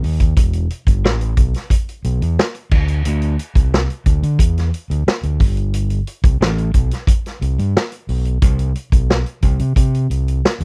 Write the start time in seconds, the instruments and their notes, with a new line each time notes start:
0.03 fingered electric bass D#2, open hi-hat
0.20 kick, closed hi-hat
0.37 fingered electric bass E1, kick, closed hi-hat
0.53 closed hi-hat
0.70 closed hi-hat
0.87 fingered electric bass G1, kick, closed hi-hat
1.04 fingered electric bass A1, snare
1.21 closed hi-hat
1.37 fingered electric bass B1, kick, closed hi-hat
1.54 snare, closed hi-hat
1.70 kick, closed hi-hat
1.89 closed hi-hat
2.04 fingered electric bass B1, closed hi-hat
2.21 fingered electric bass E2, closed hi-hat
2.39 snare
2.55 closed hi-hat
2.71 fingered electric bass D2, kick, crash
2.88 closed hi-hat
3.05 fingered electric bass D2, closed hi-hat
3.22 closed hi-hat
3.39 closed hi-hat
3.55 fingered electric bass C2, kick, closed hi-hat
3.74 snare
3.90 closed hi-hat
4.06 fingered electric bass D2, kick, closed hi-hat
4.23 fingered electric bass D3, closed hi-hat
4.39 fingered electric bass E2, kick, closed hi-hat
4.58 snare, closed hi-hat
4.74 closed hi-hat
4.90 fingered electric bass D2, closed hi-hat
5.07 muted fingered electric bass stroke, snare
5.23 fingered electric bass D2, closed hi-hat
5.40 fingered electric bass G1, kick, open hi-hat
5.57 closed hi-hat
5.74 closed hi-hat
5.90 closed hi-hat
6.07 closed hi-hat
6.24 fingered electric bass C2, kick, closed hi-hat
6.41 fingered electric bass A1, snare
6.58 closed hi-hat
6.74 fingered electric bass B1, kick, closed hi-hat
6.91 snare, closed hi-hat
7.07 kick, closed hi-hat
7.26 snare, closed hi-hat
7.41 fingered electric bass C2, closed hi-hat
7.58 fingered electric bass G2, closed hi-hat
7.77 snare
7.92 closed hi-hat
8.09 fingered electric bass B1, open hi-hat
8.25 closed hi-hat
8.42 fingered electric bass C2, kick, closed hi-hat
8.59 closed hi-hat
8.75 closed hi-hat
8.92 fingered electric bass B1, kick, closed hi-hat
9.10 snare
9.26 closed hi-hat
9.42 fingered electric bass C2, kick, closed hi-hat
9.59 fingered electric bass C3, closed hi-hat
9.76 fingered electric bass C3, kick, closed hi-hat
9.95 closed hi-hat
10.10 fingered electric bass C2, closed hi-hat
10.28 closed hi-hat
10.45 snare
10.60 fingered electric bass E2, closed hi-hat